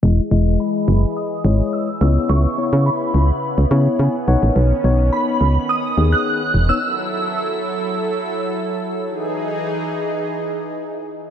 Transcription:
<<
  \new Staff \with { instrumentName = "Synth bell" } { \time 4/4 \key e \major \tempo 4 = 106 r4 b''4 dis'''4 e'''8 e'''8 | cis'''4 b''4 r2 | r4 b''4 dis'''8. fis'''4 e'''16~ | e'''2. r4 |
r1 | }
  \new Staff \with { instrumentName = "Tine electric piano" } { \time 4/4 \key e \major << { r1 | r2. gis''8 fis''8 | r1 | r1 |
r1 | } \\ { <gis e' dis''>16 r16 <gis e' dis''>4~ <gis e' dis''>16 r8. <gis e' cis''>8. r16 <b e' cis''>8~ | <b e' cis''>16 r16 <b e' cis''>4~ <b e' cis''>16 r8. <b e' cis''>8. r16 <b dis' cis''>8~ | <b dis' cis''>16 r16 <b dis' cis''>4~ <b dis' cis''>16 r8. <b dis' gis'>8. r8 <b dis' cis''>16 | r1 |
r1 | } >> }
  \new Staff \with { instrumentName = "Analog synth pad" } { \time 4/4 \key e \major << { <e gis'>2.~ <e gis'>8 <cis e'>8~ | <cis e'>2.~ <cis e'>8 <dis cis'>8~ | <dis cis'>1 | <fis a'>1 |
<e dis' gis'>1 | } \\ { dis''2.~ dis''8 b8~ | b1~ | b1 | e'1 |
r1 | } >> }
  \new Staff \with { instrumentName = "FM bass" } { \clef bass \time 4/4 \key e \major e,,8 e,,8. r16 fis,,8 r8 gis,,8 r8 cis,8 | cis,8 r16 cis8 r16 cis,8 r16 cis,16 cis8 cis16 r16 b,,16 a,,16 | b,,8 b,,8. r16 cis,8 r8 dis,8 r8 e,,8 | r1 |
r1 | }
>>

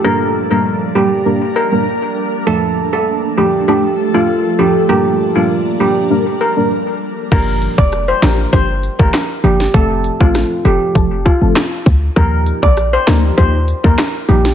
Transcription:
<<
  \new Staff \with { instrumentName = "Steel pan" } { \time 4/4 \key g \minor \tempo 4 = 99 bes'16 r8 bes'16 r8 g'16 r8. bes'16 r4 r16 | a'16 r8 a'16 r8 g'16 r16 g'16 r8 f'16 r8 g'16 r16 | g'16 r8 f'16 r8 g'16 r8. bes'16 r4 r16 | bes'16 r8 d''16 r16 c''16 bes'16 r16 c''16 r8 bes'16 r8 g'16 r16 |
a'16 r8 f'8 r16 g'8 r8 f'16 r4 r16 | bes'16 r8 d''16 r16 c''16 bes'16 r16 c''16 r8 bes'16 r8 g'16 r16 | }
  \new Staff \with { instrumentName = "Synth stab" } { \time 4/4 \key g \minor <g bes d' bes'>8. <g bes d' bes'>8. <g bes d' bes'>8 <g bes d' bes'>16 r8 <g bes d' bes'>16 r4 | <f a d' a'>4. <f a d' a'>8 <f a d' a'>16 r8 <f a d' a'>16 r8 <f a d' a'>16 r16 | <g bes d' bes'>8. <g bes d' bes'>8. <g bes d' bes'>8 <g bes d' bes'>16 r8 <g bes d' bes'>16 r4 | <f bes d' g'>4. <f bes d' g'>8 <f bes d' g'>16 r8 <f bes d' g'>16 r8 <f bes d' g'>16 r16 |
<f a c' a'>8. <f a c' a'>8. <f a c' a'>8 <f a c' a'>16 r8 <f a c' a'>16 r4 | <f bes ees' g'>4. <f bes ees' g'>8 <f bes ees' g'>16 r8 <f bes ees' g'>16 r8 <f bes ees' g'>16 r16 | }
  \new Staff \with { instrumentName = "Ambient pad" } { \time 4/4 \key g \minor << { <g bes bes'>1 | <f a a'>1 | <g bes bes'>1 | r1 |
r1 | r1 | } \\ { d'1~ | d'1 | d'1 | r1 |
r1 | r1 | } >> }
  \new Staff \with { instrumentName = "808-style bass" } { \clef bass \time 4/4 \key g \minor r1 | r1 | r1 | g,,8. f,,8. a,,8 g,,8. g,,16 r8 g,,8 |
f,,8. a,,8 r16 f,,16 r16 f,,8. g,,16 r8 d,8 | ees,8. bes,,8. d,8 ees,8. ees,16 r8 bes,,8 | }
  \new DrumStaff \with { instrumentName = "Drums" } \drummode { \time 4/4 r4 r4 r4 r4 | r4 r4 r4 r4 | r4 r4 r4 r4 | <cymc hh bd>8 hh16 bd16 <hh ss>8 <hc hh sn>8 <hh bd>8 hh16 bd16 <hc hh ss sn>8 hh16 sn16 |
<hh bd>8 hh16 bd16 <hh ss sn>8 hh8 <hh bd>8 <hh bd>8 <hc hh ss sn>8 <hh bd>8 | <hh bd>8 hh16 bd16 <hh ss>8 <hc hh sn>8 <hh bd>8 hh16 bd16 <hc hh ss sn>8 hh16 sn16 | }
>>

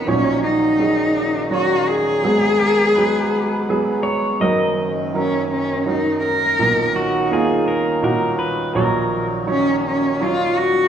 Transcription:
<<
  \new Staff \with { instrumentName = "Pedal steel guitar" } { \time 3/4 \key dis \minor \tempo 4 = 83 r2. | r8 ais'8 b'4. cis''8 | dis''8. r2 r16 | r8 fis'8 gis'8 ais'8 ais'8 b'8 |
ais'8. r2 r16 | }
  \new Staff \with { instrumentName = "Cello" } { \time 3/4 \key dis \minor cis'8 dis'4. fis'8 gis'8~ | gis'2~ gis'8 r8 | r4 cis'8 cis'8 dis'8 ais'8~ | ais'4 r2 |
r4 cis'8 cis'8 eis'8 fis'8 | }
  \new Staff \with { instrumentName = "Grand piano" } { \time 3/4 \key dis \minor <fis dis' cis''>4 <fis dis' gis'>8 r8 <fis dis' cis''>4 | <fis b gis'>4 <fis b gis'>8 r8 <fis b gis'>4 | <fis dis' ais'>4 <fis dis' ais'>8 r8 <fis dis' ais'>4 | <ais, dis' ais'>4 <ais dis' eis'>8 r8 <ais, dis' fis'>4 |
<fis dis' cis''>4 <fis dis' cis''>8 r8 <fis dis' cis''>4 | }
  \new Staff \with { instrumentName = "Grand piano" } { \clef bass \time 3/4 \key dis \minor <ais,, ais,>2. | <gis,, gis,>2. | <fis,, fis,>2. | <b,, b,>2. |
<ais,, ais,>2. | }
  \new Staff \with { instrumentName = "Harmonium" } { \clef bass \time 3/4 \key dis \minor << { <ais, dis cis'>2. | <gis, b>2. | <fis, cis'>2. | <dis dis'>2. |
<ais, dis cis'>2. | } \\ { fis2.~ | fis2. | dis2. | r2. |
fis2. | } >> }
>>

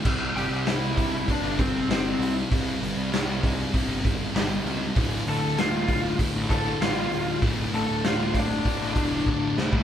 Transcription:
<<
  \new Staff \with { instrumentName = "Lead electric guitar" } { \time 4/4 \key d \minor \tempo 4 = 98 r8 <g' g''>8 <e' e''>4 <d' d''>8 <c' c''>8 <c' c''>8. r16 | r1 | r8 <a' a''>8 <f' f''>4 r8 <a' a''>8 <f' f''>4 | r8 <a' a''>8 <f' f''>8 <d' d''>2 r8 | }
  \new Staff \with { instrumentName = "Distorted electric guitar" } { \clef bass \time 4/4 \key d \minor <c g c'>8 <c g c'>8 <c g c'>8 <c g c'>8 <c g c'>8 <c g c'>8 <c g c'>8 <c g c'>8 | <c g c'>8 <c g c'>8 <c g c'>8 <c g c'>8 <c g c'>8 <c g c'>8 <c g c'>8 <c g c'>8 | <d, a, d>8 <d, a, d>8 <d, a, d>8 <d, a, d>8 <d, a, d>8 <d, a, d>8 <d, a, d>8 <d, a, d>8 | <d, a, d>8 <d, a, d>8 <d, a, d>8 <d, a, d>8 <d, a, d>8 <d, a, d>8 <d, a, d>8 <d, a, d>8 | }
  \new Staff \with { instrumentName = "Picked electric bass" } { \clef bass \time 4/4 \key d \minor c,8 g,,16 c,4. g,,8. g,,8 c,8 | c,8 g,,16 c,4. g,,8. g,,8 cis,8 | d,,8 a,,16 d,,4. a,,8. a,,8 d,,8 | d,,8 a,,16 d,,4. a,,16 e,,8 d,,8 c,8 | }
  \new DrumStaff \with { instrumentName = "Drums" } \drummode { \time 4/4 <cymc bd>8 hho8 <hho sn>8 <hho bd>8 <hho bd>8 <hho bd>8 <hho sn>8 hho8 | <hho bd>8 hho8 <hho sn>8 <hho bd>8 <hho bd>8 <hho bd>8 <hho sn>8 hho8 | <hho bd>8 hho8 <hho sn>8 <hho bd>8 <hho bd>8 <hho bd>8 <hho sn>8 hho8 | <hho bd>8 hho8 <hho sn>8 <hho bd>8 <hho bd>8 <hho bd>8 bd8 sn16 bd16 | }
>>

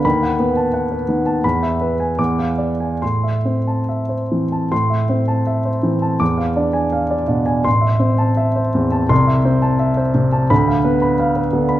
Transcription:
<<
  \new Staff \with { instrumentName = "Grand piano" } { \time 2/4 \key a \minor \tempo 4 = 83 << { b''8 r4. | b''8 r8 d'''8 r8 | c'''8 r4. | c'''8 r4. |
d'''8 r4. | c'''8 r4. | c'''8 r4. | b''8 r4. | } \\ { r16 fis''16 b'16 a''16 fis''16 b'16 dis16 a''16 | r16 e''16 b'16 gis''16 r16 f''16 d''16 gis''16 | r16 e''16 c''16 a''16 e''16 c''16 e16 a''16 | r16 e''16 c''16 a''16 e''16 c''16 e16 a''16 |
r16 f''16 d''16 gis''16 f''16 d''16 b,16 gis''16 | r16 e''16 c''16 a''16 e''16 c''16 e,16 a''16 | r16 e''16 c''16 a''16 e''16 c''16 c16 a''16 | r16 f''16 b'16 b''16 f''16 b'16 d16 b''16 | } >> }
  \new Staff \with { instrumentName = "Grand piano" } { \time 2/4 \key a \minor dis,8 b4 b8 | e,4 e,4 | a,8 c'4 c'8 | a,8 c'4 c'8 |
e,8 d'4 d'8 | a,,8 c'4 c'8 | c,8 c'4 c'8 | d,8 b4 b8 | }
>>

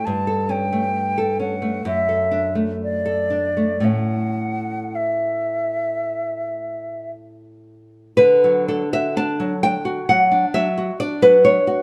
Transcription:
<<
  \new Staff \with { instrumentName = "Flute" } { \time 4/4 \key d \major \tempo 4 = 62 a''8 g''4 fis''8 e''8 r8 d''4 | fis''4 e''2 r4 | r1 | }
  \new Staff \with { instrumentName = "Nylon-string guitar" } { \time 4/4 \key d \major << { r1 | r1 | b'8 a'16 e''16 a''8 g''8 fis''8 e''8 d''16 b'16 cis''8 | } \\ { g,16 a'16 cis'16 a8 a'16 cis'16 a16 fis,16 a'16 d'16 a8 a'16 d'16 a16 | <a, a cis'>1 | d16 fis16 d'16 fis'16 d'16 fis16 d'16 fis'16 fis16 d'16 fis16 fis'16 d'16 fis16 d'16 fis'16 | } >> }
>>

